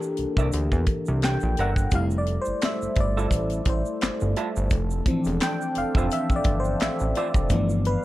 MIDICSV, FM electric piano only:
0, 0, Header, 1, 2, 480
1, 0, Start_track
1, 0, Key_signature, -1, "major"
1, 0, Tempo, 697674
1, 1321, Time_signature, 4, 2, 24, 8
1, 5538, End_track
2, 0, Start_track
2, 0, Title_t, "FM electric piano"
2, 0, Program_c, 0, 5
2, 0, Control_c, 0, 64, 127
2, 0, Note_on_c, 0, 52, 61
2, 0, Note_on_c, 0, 58, 54
2, 0, Note_on_c, 0, 62, 60
2, 0, Note_on_c, 0, 67, 82
2, 0, Note_on_c, 0, 69, 69
2, 0, Note_on_c, 0, 70, 83
2, 475, Note_off_c, 0, 69, 0
2, 857, Note_on_c, 0, 79, 94
2, 1073, Note_off_c, 0, 79, 0
2, 1103, Note_on_c, 0, 78, 95
2, 1199, Note_off_c, 0, 78, 0
2, 1328, Control_c, 0, 64, 0
2, 1329, Note_on_c, 0, 55, 48
2, 1331, Note_off_c, 0, 62, 0
2, 1331, Note_off_c, 0, 70, 0
2, 1333, Note_off_c, 0, 52, 0
2, 1335, Note_off_c, 0, 58, 0
2, 1335, Note_off_c, 0, 67, 0
2, 1335, Note_on_c, 0, 57, 51
2, 1338, Note_on_c, 0, 64, 53
2, 1343, Note_on_c, 0, 77, 96
2, 1410, Note_off_c, 0, 77, 0
2, 1434, Control_c, 0, 64, 127
2, 1500, Note_on_c, 0, 74, 82
2, 1655, Note_off_c, 0, 74, 0
2, 1662, Note_on_c, 0, 72, 91
2, 1816, Note_off_c, 0, 72, 0
2, 1824, Note_on_c, 0, 76, 87
2, 1920, Note_off_c, 0, 76, 0
2, 2017, Note_off_c, 0, 55, 0
2, 2020, Note_off_c, 0, 57, 0
2, 2022, Note_off_c, 0, 64, 0
2, 2067, Note_on_c, 0, 74, 86
2, 2542, Note_on_c, 0, 72, 73
2, 2548, Note_off_c, 0, 74, 0
2, 2984, Note_off_c, 0, 72, 0
2, 3249, Control_c, 0, 64, 0
2, 3383, Control_c, 0, 64, 127
2, 3490, Note_on_c, 0, 53, 59
2, 3492, Note_on_c, 0, 60, 53
2, 3495, Note_on_c, 0, 52, 62
2, 3737, Note_on_c, 0, 79, 102
2, 3976, Note_off_c, 0, 79, 0
2, 3977, Note_on_c, 0, 77, 90
2, 4178, Note_off_c, 0, 53, 0
2, 4179, Note_off_c, 0, 60, 0
2, 4181, Note_off_c, 0, 52, 0
2, 4193, Note_off_c, 0, 77, 0
2, 4216, Note_on_c, 0, 76, 98
2, 4358, Note_off_c, 0, 76, 0
2, 4375, Note_on_c, 0, 74, 93
2, 4533, Note_off_c, 0, 74, 0
2, 4539, Note_on_c, 0, 72, 83
2, 4695, Note_off_c, 0, 72, 0
2, 4697, Note_on_c, 0, 76, 88
2, 4913, Note_off_c, 0, 76, 0
2, 4935, Note_on_c, 0, 74, 92
2, 5168, Note_on_c, 0, 53, 58
2, 5168, Note_on_c, 0, 57, 50
2, 5169, Control_c, 0, 64, 0
2, 5171, Note_on_c, 0, 59, 52
2, 5175, Note_on_c, 0, 52, 58
2, 5283, Control_c, 0, 64, 127
2, 5412, Note_on_c, 0, 71, 82
2, 5422, Note_off_c, 0, 74, 0
2, 5538, Note_off_c, 0, 52, 0
2, 5538, Note_off_c, 0, 53, 0
2, 5538, Note_off_c, 0, 57, 0
2, 5538, Note_off_c, 0, 59, 0
2, 5538, Note_off_c, 0, 71, 0
2, 5538, End_track
0, 0, End_of_file